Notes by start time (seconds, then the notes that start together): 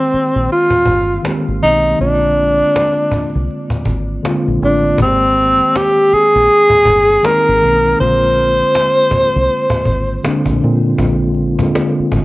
Already playing: D#3 G#3 A#3 C4 G4
0.13 muted fingered electric bass stroke, cajon slap
0.33 A#1, cajon slap
0.50 F4, cajon slap
0.70 cajon bass
0.85 G1, cajon bass
1.23 D#3 G#3 A#3 C4 G4, cajon slap
1.44 G#1, cajon slap
1.61 B1 D#3 G#3 A#3 C4 D#4
1.66 D#4
1.98 A#1 D3 G#3 A#3 C4 D4, cajon slap
2.02 F4
2.20 cajon slap
2.35 cajon slap
2.76 cajon slap
2.96 cajon slap
3.11 muted fingered electric bass stroke, cajon bass
3.33 C2, cajon slap
3.51 cajon slap
3.70 cajon bass
3.85 G#1, cajon bass
4.09 cajon slap
4.23 D3 G#3 A#3 C4, cajon slap
4.27 F4
4.45 A#1, cajon slap
4.60 A1 D3 G#3 A#3 C4, cajon slap
4.64 D4 F4
4.98 G#1 D#3 G#3 A#3 C4, cajon bass
5.03 G4
5.75 G4, cajon slap
5.96 cajon slap
6.13 G#4, muted fingered electric bass stroke
6.33 A#1, cajon slap
6.70 cajon bass
6.85 G1, cajon bass
7.09 cajon slap
7.22 D#3 G#3 A#3 C4 A#4, cajon slap
7.27 D#4
7.44 cajon slap
7.49 G#1
7.61 B1 D#3 G#3 A#3 C4
7.65 A#4
7.98 A#1 C#3 G#3 A#3 C4 C5
8.02 D3 F4
8.19 cajon slap
8.23 cajon slap
8.75 cajon slap
8.96 cajon slap
9.11 muted fingered electric bass stroke, cajon bass
9.36 C2
9.70 cajon bass
9.86 G#1, cajon bass
10.09 cajon slap
10.24 D3 G#3 A#3 C4, muted fingered electric bass stroke, cajon slap
10.28 D4
10.46 A#1, cajon bass
10.61 A#2 D3 G#3 A#3 C4, cajon slap
10.65 F4
10.83 cajon slap
10.98 A#1 D3 G#3 A#3 C4, cajon bass
11.03 F4
11.20 cajon slap
11.24 cajon slap
11.34 cajon slap
11.59 D3 G#3 A#3 C4 F4, cajon bass
11.75 cajon slap
11.97 muted fingered electric bass stroke, cajon slap
12.12 G1, cajon bass